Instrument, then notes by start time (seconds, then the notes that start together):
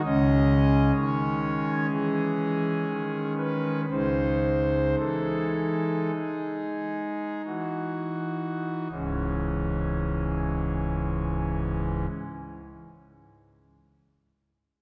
pipe organ
0.04 C#2 C#3 G#3 C#4 D#5
0.96 D#3 C#5
1.90 E3 G#4
2.88 D#3
3.37 B4
3.90 C#2 C#3 G#3 D#4 C5
4.98 E3 A4
6.15 G#3 G#4
7.46 E3 F#4
8.91 C#1 C#2 G#2 E3 G#3 C#4